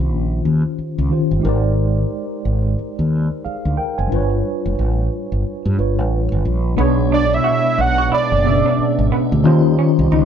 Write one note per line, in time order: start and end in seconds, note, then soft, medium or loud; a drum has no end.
0.00 0.12 C2 medium
0.00 1.04 D#3 medium
0.00 1.05 C#4 medium
0.00 1.06 F4 medium
0.00 1.08 G4 medium
0.00 1.09 C5 medium
0.12 0.41 A#1 medium
0.45 0.62 D#2 medium
0.79 muted fretless electric bass stroke soft
0.98 1.09 C#2 medium
1.08 1.43 D#3 soft
1.08 1.43 C#4 soft
1.08 1.44 F4 soft
1.08 1.42 G4 soft
1.13 1.45 C5 medium
1.31 1.43 G1 medium
1.39 4.04 G#3 medium
1.39 4.05 D#4 medium
1.39 3.39 G4 medium
1.45 2.03 G#1 medium
1.45 3.40 A#4 medium
1.45 3.41 C5 medium
1.49 3.42 D5 medium
2.45 2.74 G#1 medium
2.79 muted fretless electric bass stroke soft
2.99 3.28 D#2 medium
3.45 3.76 G#4 soft
3.45 3.76 F5 medium
3.45 muted fretless electric bass stroke soft
3.65 3.76 D2 medium
3.77 3.96 A#4 soft
3.77 3.96 G5 medium
3.98 4.10 F#1 medium
3.98 4.29 C5 soft
3.98 4.29 G#5 medium
4.07 5.72 G3 medium
4.07 5.73 D4 medium
4.11 4.41 G1 medium
4.11 5.74 F4 medium
4.11 5.75 B4 medium
4.16 5.76 C#5 medium
4.66 4.76 F1 medium
4.79 5.08 A1 medium
5.32 5.43 G1 medium
5.66 5.76 G2 medium
5.76 5.99 G1 medium
5.76 6.76 G3 soft
5.76 6.77 D4 soft
5.76 6.77 F4 soft
5.76 6.78 B4 soft
5.80 6.78 C#5 soft
5.99 6.27 A1 medium
6.32 6.43 G1 medium
6.45 6.74 A#1 medium
6.76 7.37 B1 loud
6.76 8.00 B2 medium
6.76 9.41 G#3 medium
6.76 9.41 B3 medium
6.76 8.01 B3 medium
6.76 6.89 B3 medium
6.76 9.41 D4 medium
6.76 8.01 D4 medium
6.76 8.02 G#4 medium
6.81 8.02 C#5 medium
7.12 7.23 D4 medium
7.12 7.36 D5 medium
7.34 7.82 E5 loud
7.44 7.55 F#4 medium
7.78 8.07 B1 medium
7.78 8.12 F#5 loud
7.78 muted clean electric guitar stroke soft
7.98 8.05 F#4 medium
8.12 8.23 E4 medium
8.12 9.08 D5 medium
8.12 muted fretless electric bass stroke soft
8.32 8.61 F#1 medium
8.43 9.36 B2 medium
8.43 9.36 B3 medium
8.43 8.52 C#4 soft
8.43 9.37 G#4 medium
8.43 muted clean electric guitar stroke soft
8.47 9.38 E5 medium
8.51 9.40 D4 medium
8.66 8.73 D4 medium
8.79 muted fretless electric bass stroke soft
8.99 9.10 G#1 medium
9.12 9.23 B3 medium
9.32 9.45 D2 medium
9.43 9.74 D#2 loud
9.43 10.25 D#3 medium
9.43 10.25 G3 medium
9.43 10.25 C#4 medium
9.43 10.25 D#4 medium
9.43 10.25 F4 medium
9.43 10.25 G4 medium
9.47 10.25 C5 loud
9.79 9.90 C#4 medium
9.99 10.10 C2 medium
10.12 10.25 C#2 medium
10.12 10.23 D#4 medium